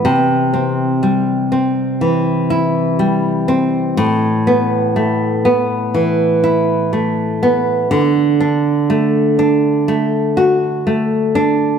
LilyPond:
\new Staff \with { instrumentName = "Nylon-string guitar" } { \time 4/4 \key c \lydian \tempo 4 = 61 c8 c'8 g8 c'8 e8 e'8 g8 c'8 | a,8 b8 a8 b8 e8 e'8 a8 b8 | d8 d'8 a8 d'8 a8 fis'8 a8 d'8 | }